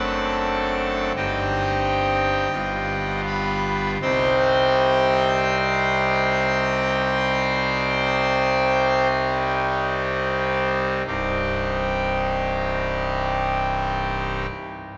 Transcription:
Already playing: F#1 F#2 A3 C4 D4 A4 F#5 A5
1.16 G1 G2 G3 C4 D#4 G4 D#5 G5
2.52 G1 G2 G3 B3 F4
3.27 B4 B5
4.01 C2 C3 G3 C4 D#4 C5 G5 C6
11.06 C1 C2 G2 G3 C4 D#4 G4

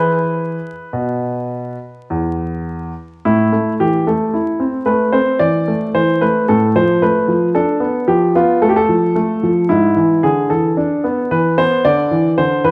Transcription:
Already playing: E3 E4 G#4 B4
0.93 B2
2.10 E2
3.25 A2 E4
3.52 A3
3.80 E3 G4
4.07 A3 A4
4.34 E4
4.60 C4
4.86 A3 B4
5.12 C4 C5
5.39 E3 D5
5.68 A3
5.95 E3 C5
6.21 A3 B4
6.48 A2 A4
6.76 F3 C5
7.02 A3 B4
7.28 F3
7.55 D4 A4
7.80 B3
8.08 F3 G4
8.35 B3 F4
8.62 A3 A4
8.69 G4
8.76 A4
8.89 F3
9.15 A3
9.43 F3
9.69 G#2 E4
9.97 E3
10.23 D3 G#4
10.50 E3 A4
10.77 D4
11.04 B3
11.31 E3 B4
11.58 B3 C5
11.85 D3 D5
12.11 E3
12.38 D3 C5
12.64 E3 B4

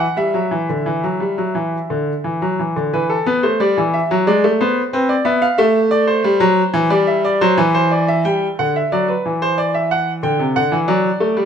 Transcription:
0.00 F#5
0.17 G3 E5
0.34 F#3
0.51 E3
0.69 D3
0.86 E3
1.03 F#3
1.20 G3
1.38 F#3
1.55 E3
1.90 D3
2.24 E3
2.42 F#3
2.59 E3
2.76 D3
2.94 E3 B4
3.10 A4
3.26 B3 B4
3.43 A3 C5
3.60 G3 D5
3.78 E3
3.94 E5
4.11 F#3
4.27 G#3 D5
4.44 A3
4.61 B3 C5
4.93 C4 B4
5.09 D5
5.25 B3 E5
5.42 F5
5.58 A3 E5
5.91 D5
6.07 C5
6.24 G3
6.40 F#3
6.74 E3
6.90 G3 D5
7.07 E5
7.25 D5
7.41 F#3 C5
7.58 E3 B4
7.74 C5
7.91 D5
8.08 E5
8.25 G3 G5
8.59 D3 F#5
8.76 E5
8.92 F#3 D5
9.08 B4
9.26 E3
9.42 C5
9.58 D5
9.74 E5
9.91 F#5
10.23 D3 G5
10.39 C3
10.56 D3 F#5
10.72 E3
10.88 F#3 D5
11.20 A3
11.37 G3

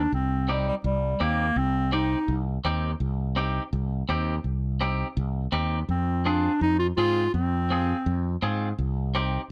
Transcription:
Already playing: D4
0.12 C2 C4
0.49 G3 C4 D#4 G4
0.68 G3
0.84 C2 G3
1.20 D#2 A#3 C4 D#4 G4
1.56 C2 C4
1.92 C4 D#4 G4
2.28 C2
2.64 D#2 C4 D#4 G4
3.00 C2
3.36 C4 D#4 G4
3.73 C2
4.09 D#2 C4 D#4 G4
4.44 C2
4.81 C4 D#4 G4
5.17 C2
5.52 D#2 C4 D#4 G4
5.89 F2 C4
6.25 C4 D4 F4 G#4
6.61 F2 D#4
6.79 F4
6.97 G#2 C4 F4 G#4
7.34 F2 C4
7.70 C4 F4 G#4
8.06 F2
8.42 G#2 C4 F4 G#4
8.78 C2
9.15 C4 D#4 G4

